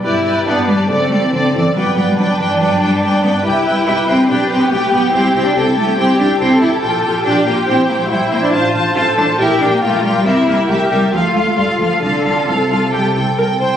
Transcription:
X:1
M:4/4
L:1/16
Q:1/4=140
K:G
V:1 name="Violin section"
d2 d2 d2 d2 d2 d2 d2 d2 | g2 g2 g2 g2 g2 g2 g2 g2 | g2 g2 g2 g2 g2 g2 g2 g2 | g2 g2 g2 g2 g2 g2 g2 g2 |
[K:F] g2 g2 g2 g2 g2 g2 g2 g2 | a2 a2 a2 a2 g2 g2 g2 g2 | e2 e2 e2 e2 f2 f2 f2 f2 | f2 f2 f2 f2 g2 g2 g2 g2 |]
V:2 name="Viola section"
[GB]2 [GB]2 [GB]2 [GB]2 [Ad]2 [Ad]2 [Ad]2 [Ad]2 | [Bd]2 [Bd]2 [Bd]2 [Bd]2 [Bd]2 [Bd]2 [Bd]2 [Bd]2 | [GB]2 [GB]2 [GB]2 [GB]2 [GB]2 [GB]2 [GB]2 [GB]2 | [EG]2 [EG]2 [EG]2 [EG]2 [EG]2 [EG]2 [EG]2 [EG]2 |
[K:F] [FG]2 [FG]2 [FG]2 [FG]2 [Ec]2 [Ec]2 [Ec]2 [Ec]2 | [Fc]2 [Fc]2 [Fc]2 [Fc]2 [GB]2 [GB]2 [GB]2 [GB]2 | [GB]2 [GB]2 [GB]2 [GB]2 [FA]2 [FA]2 [FA]2 [FA]2 | [FA]2 [FA]2 A2 F2 G2 A2 B2 c2 |]
V:3 name="Violin section"
E4 D4 C8 | B,4 D12 | E8 G8- | G4 A4 G4 A4- |
[K:F] A4 G8 E4 | F4 A4 G4 F4 | E4 G4 F8 | A12- A2 z2 |]
V:4 name="Cello section"
z4 B,2 G,2 A,2 G, E, D,2 E,2 | F,2 F, G, F,2 D, E, F,2 G,2 G,2 B,2 | z4 E2 C2 D2 C B, A,2 B,2 | C2 C D C2 A, B, C2 D2 C2 E2 |
[K:F] z4 D2 B,2 C2 B, A, G,2 B, D | z4 F2 D2 E2 D B, A,2 G, G, | C2 B,2 A,2 G,2 F,2 A, A, G,2 F,2 | D,4 C,8- C,2 z2 |]
V:5 name="Double bass section" clef=bass
G,,,2 G,,,2 G,,,2 G,,,2 F,,,2 F,,,2 F,,,2 F,,,2 | G,,,2 G,,,2 G,,,2 G,,,2 G,,,2 G,,,2 G,,,2 G,,,2 | C,,2 C,,2 C,,2 C,,2 B,,,2 B,,,2 B,,,2 B,,,2 | C,,2 C,,2 C,,2 C,,2 C,,2 C,,2 C,,2 C,,2 |
[K:F] B,,,2 B,,,2 B,,,2 B,,,2 B,,,2 B,,,2 B,,,2 B,,,2 | A,,,2 A,,,2 A,,,2 A,,,2 B,,,2 B,,,2 B,,,2 B,,,2 | C,,2 C,,2 C,,2 C,,2 D,,2 D,,2 D,,2 D,,2 | C,,2 C,,2 C,,2 C,,2 C,,2 C,,2 C,,2 C,,2 |]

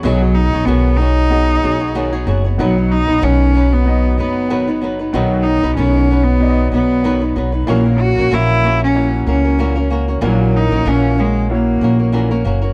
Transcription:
X:1
M:4/4
L:1/16
Q:"Swing 16ths" 1/4=94
K:B
V:1 name="Grand piano"
[B,FGd]4- [B,FGd] z3 [B,FGd]4- [B,FGd] z3 | [B,DFd]4- [B,DFd] z3 [B,DFd]4- [B,DFd] z3 | [B,DFd]4- [B,DFd] z3 [B,DF=d^d]4- [B,DF=d^d] z3 | [A,EFc]4- [A,EFc] z3 [A,EFc]4- [A,EFc] z3 |
[E,A,Fc]4- [E,A,Fc] z3 [A,EFc]4- [A,EFc] z3 |]
V:2 name="Nylon-string guitar"
[B,,D,F,B,FG] [F,B,FG]2 [F,B,FG] [B,,D,F,B,FG]2 [F,B,FG]4 [F,B,FG] [F,B,FG] [B,,D,F,B,FG] [F,B,FG] [F,B,FG] [F,B,FG] | [B,,D,F,B,DB] [F,B,DB]2 [F,B,DB] [B,,D,F,B,DB]2 [F,B,DB]4 [F,B,DB]2 [B,,D,F,B,DB] [F,B,DB] [F,B,DB] [F,B,DB] | [B,,D,F,B,DB]3 [F,B,DB] [B,,D,F,B,DB]2 [F,B,DB]4 [F,B,DB]2 [B,,D,F,B,DB] [F,B,DB] [F,B,DB] [F,B,DB] | [A,,E,A,CFA] [A,CFA]2 [A,CFA] [A,,E,A,CFA]2 [A,CFA]4 [A,CFA] [A,CFA] [A,,E,A,CFA] [A,CFA] [A,CFA] [A,CFA] |
[A,,E,A,CFA]3 [A,CFA] [A,,E,A,CFA]2 [A,CFA]4 [A,CFA] [A,CFA] [A,,E,A,CFA] [A,CFA] [A,CFA] [A,CFA] |]
V:3 name="Cello"
F,2 D2 B,2 D8 z2 | F,2 D2 C3 B,3 B,4 z2 | F,2 D2 C3 B,3 B,4 z2 | A,2 F2 E3 C3 C4 z2 |
F,2 D2 C2 G,2 A,6 z2 |]
V:4 name="Upright bass" clef=bass
B,,,3 B,,, B,,,6 B,,,4 F,,,2 | B,,,3 B,,, B,,,6 F,,,6 | B,,,3 B,,, B,,,6 B,,,4 B,,,2 | A,,,3 A,,, A,,,6 C,,6 |
A,,,3 A,,, A,,,6 A,,,4 F,,,2 |]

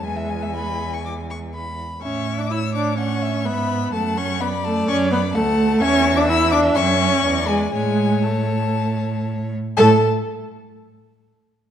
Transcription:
X:1
M:4/4
L:1/16
Q:1/4=122
K:A
V:1 name="Violin"
g12 z4 | c'3 d' e'2 d'2 c'4 b4 | a2 c'2 b2 a2 c'2 b2 a4 | c'3 d' e'2 d'2 c'6 g2 |
g4 a8 z4 | a2 z12 z2 |]
V:2 name="Violin"
g e g e b3 c' d'2 c'2 b4 | e4 c4 f2 e2 e4 | f4 d8 f4 | e12 d4 |
c12- c2 z2 | A2 z12 z2 |]
V:3 name="Viola"
G,12 z4 | C3 D E2 D2 C4 B,4 | A,2 C2 B,2 A,2 C2 B,2 A,4 | C3 D E2 D2 C6 G,2 |
G,4 A,8 z4 | A2 z12 z2 |]
V:4 name="Cello" clef=bass
E,,12- E,,2 z2 | A,,12 G,,4 | F,,8 F,,4 D,,4 | E,,8 F,,4 E,,4 |
A,,12- A,,2 z2 | A,,2 z12 z2 |]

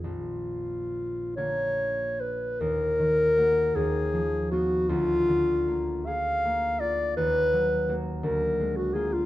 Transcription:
X:1
M:6/8
L:1/16
Q:3/8=53
K:Bbphr
V:1 name="Clarinet"
F6 d4 c2 | B6 A4 G2 | F6 f4 =d2 | c4 z2 B3 G A F |]
V:2 name="Harp"
[B,,,F]6 [=D,B,F]6 | E,,2 E,2 [B,G]2 E,,2 F,2 [CF]2 | =D,,2 =D,2 B,2 A2 B,2 F2 | E,,2 G,2 [B,G]2 =D,,2 A,2 [B,F]2 |]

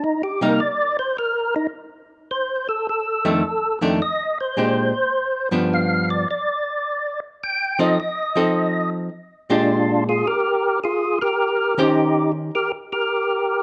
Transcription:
X:1
M:4/4
L:1/8
Q:"Swing" 1/4=106
K:Fdor
V:1 name="Tonewheel organ"
(3E G B d c B E z2 | c =A A3 z e c | c3 z f d d2- | d z g e e3 z |
z [DF]2 [FA] [GB]2 [FA] [GB]- | [GB] [EG]2 z [GB] [GB]3 |]
V:2 name="Hollow-body jazz guitar"
z [C,G,B,E] z6 | z3 [F,,E,=A,D] z [F,,E,A,D] z2 | [B,,A,DG] z2 [G,,F,_CD]3 z2 | z3 [F,CE=A] z [F,CEA]3 |
z [B,,A,DG]3 z4 | z [E,_DGc]3 z4 |]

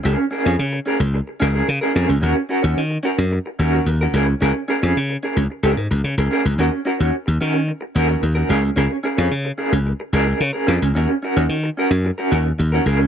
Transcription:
X:1
M:4/4
L:1/16
Q:1/4=110
K:Ebm
V:1 name="Clean electric guitar"
[DAB] z [DAB] [DAd] z2 [DAB] z3 [DAB] [DAB] z [DAB] [DAB] z | [DGB] z [DGB] [DGd] z2 [DGB] z3 [DGB] [DGB] z [DGB] [DAB] z | [DAB] z [DAB] [DAd] z2 [DAB] z2 [DAB] z3 [DAB] [DAB] z | [DGB] z [DGB] [DGd] z2 [DGB] z3 [DGB] [DGB] z [DGB] [DAB] z |
[DAB] z [DAB] [DAd] z2 [DAB] z3 [DAB] [DB] z [DAB] [DAB] z | [DGB] z [DGB] [DGd] z2 [DGB] z2 [DGB] [DGB] z2 [DGB] [DAB] z |]
V:2 name="Slap bass" clef=bass
D,, z2 F,, D,2 z D,,2 z D,,2 D, z F,, D,, | E,, z2 E,, E,2 z G,,2 z E,,2 E,,2 D,,2 | D,, z2 F,, D,2 z D,, z D,, A,, D,, D, D,, z D,, | E,, z2 E,, z E,, E,3 z E,,2 E,,2 D,,2 |
D,, z2 F,, D,2 z D,,2 z D,,2 D, z F,, D,, | E,, z2 E,, E,2 z G,,2 z E,,2 E,,2 D,,2 |]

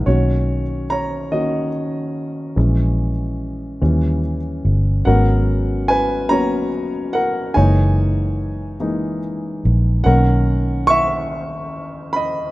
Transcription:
X:1
M:6/8
L:1/8
Q:3/8=48
K:G#m
V:1 name="Grand piano"
[Fc]2 [ca] [Fd]3- | [Fd]4 z2 | [Af]2 [Bg] [ca]2 [Af] | [cg]4- [cg] z |
[Af]2 [ec']3 [db] |]
V:2 name="Grand piano"
[D,A,C] z2 [D,A,C] z2 | [E,G,C] z2 [E,=G,C] z2 | [F,G,B,C]3 [F,A,B,C] z2 | [E,G,A,D]3 [E,G,A,D] z2 |
[D,A,C]6 |]
V:3 name="Fingered electric bass" clef=bass
B,,,6 | A,,,3 D,,2 =G,,, | G,,,6 | F,,,4- F,,, A,,, |
B,,,6 |]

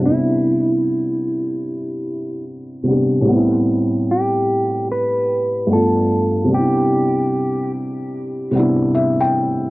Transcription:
X:1
M:4/4
L:1/16
Q:"Swing 16ths" 1/4=74
K:C
V:1 name="Clean electric guitar"
E12 z4 | z4 G4 B4 A4 | G6 z8 z2 |]
V:2 name="Felt piano"
z16 | z16 | z12 e g3 |]
V:3 name="Felt piano"
[C,G,B,DE]12- [C,G,B,DE]2 [C,G,B,DG]2 | [A,,G,B,CE]12 [G,,A,B,DF]4 | [C,G,B,DE]8- [C,G,B,DE]2 [C,G,B,DE]6 |]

